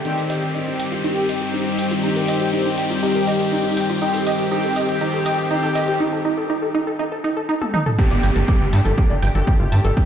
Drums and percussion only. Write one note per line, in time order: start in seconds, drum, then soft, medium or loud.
0.05 closed hi-hat soft
0.18 open hi-hat medium
0.30 open hi-hat loud
0.42 closed hi-hat soft
0.55 closed hi-hat soft
0.80 open hi-hat loud
0.92 closed hi-hat soft
1.04 closed hi-hat soft
1.29 open hi-hat loud
1.42 closed hi-hat soft
1.54 closed hi-hat soft
1.79 open hi-hat loud
1.91 closed hi-hat soft
2.03 closed hi-hat soft
2.16 open hi-hat medium
2.28 open hi-hat loud
2.41 closed hi-hat soft
2.53 closed hi-hat soft
2.78 open hi-hat loud
2.90 closed hi-hat soft
3.03 closed hi-hat soft
3.15 open hi-hat medium
3.27 open hi-hat loud
3.40 closed hi-hat soft
3.52 closed hi-hat soft
3.77 open hi-hat loud
3.90 closed hi-hat soft
4.02 closed hi-hat soft
4.14 open hi-hat medium
4.27 open hi-hat loud
4.39 closed hi-hat soft
4.51 closed hi-hat soft
4.76 open hi-hat loud
4.89 closed hi-hat soft
5.01 closed hi-hat soft
5.26 open hi-hat loud
5.38 closed hi-hat soft
5.51 closed hi-hat soft
5.75 open hi-hat loud
5.88 closed hi-hat soft
7.62 high tom medium
7.74 mid tom medium
7.86 mid tom medium
7.99 kick loud
7.99 closed hi-hat soft
8.11 open hi-hat medium
8.23 open hi-hat loud
8.36 closed hi-hat soft
8.48 kick loud
8.48 closed hi-hat soft
8.73 open hi-hat loud
8.85 closed hi-hat soft
8.98 kick loud
8.98 closed hi-hat soft
9.23 open hi-hat loud
9.35 closed hi-hat soft
9.47 kick loud
9.47 closed hi-hat soft
9.72 open hi-hat loud
9.85 closed hi-hat soft
9.97 kick loud
9.97 closed hi-hat soft